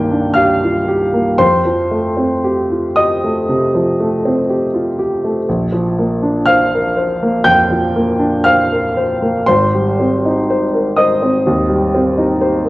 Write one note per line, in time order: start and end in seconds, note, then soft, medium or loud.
0.00 1.44 G2 soft
0.00 1.43 D#3 soft
0.00 1.14 A#3 soft
0.00 0.11 D4 soft
0.00 0.63 F4 soft
0.00 0.36 G4 soft
0.00 0.35 F5 medium
0.00 0.33 G5 medium
0.00 0.34 F6 medium
0.00 0.37 G6 loud
0.11 0.53 D4 soft
0.34 0.78 G4 soft
0.34 1.35 F5 medium
0.34 1.39 F6 medium
0.63 0.89 F4 soft
0.88 1.30 G4 soft
1.14 1.40 A#3 soft
1.38 3.42 F2 medium
1.38 2.91 C5 medium
1.38 2.94 C6 medium
1.65 2.07 F3 soft
1.91 2.33 A3 soft
2.17 2.59 C4 soft
2.44 2.85 G4 soft
2.70 2.96 F4 soft
2.96 3.38 G4 soft
2.96 5.43 D#5 medium
2.96 5.47 D#6 medium
3.24 3.64 A3 soft
3.49 3.89 C3 soft
3.75 4.14 F3 soft
4.00 4.39 A3 soft
4.26 4.64 C4 soft
4.49 4.89 G4 soft
4.74 4.98 F4 soft
4.99 5.38 G4 soft
5.24 5.48 A3 soft
5.49 7.44 A#1 medium
5.72 6.12 F3 soft
5.99 6.38 A#3 soft
6.22 6.63 D4 soft
6.46 6.88 C5 soft
6.46 7.42 F5 medium
6.46 7.46 F6 medium
6.74 6.98 A#4 soft
6.97 7.37 C5 soft
7.23 7.61 A#3 soft
7.44 7.85 F2 soft
7.44 8.40 G5 medium
7.44 8.43 G6 loud
7.70 8.10 F3 soft
7.96 8.35 A#3 soft
8.19 8.59 D4 soft
8.44 8.86 C5 soft
8.44 9.43 F5 medium
8.44 9.46 F6 medium
8.72 8.96 A#4 soft
8.97 9.37 C5 medium
9.22 9.47 A#3 soft
9.46 11.42 G#1 medium
9.46 10.49 C5 medium
9.46 10.97 C6 medium
9.74 10.14 G3 soft
9.99 10.38 C4 soft
10.25 10.64 D#4 soft
10.50 10.88 C5 soft
10.74 10.97 A#4 soft
10.96 11.36 C5 soft
10.96 12.69 D#5 medium
10.96 12.69 D#6 medium
11.22 11.60 C4 soft
11.46 11.84 D#2 soft
11.69 12.07 G3 soft
11.95 12.32 C4 soft
12.18 12.56 D#4 soft
12.41 12.69 C5 soft
12.65 12.69 A#4 soft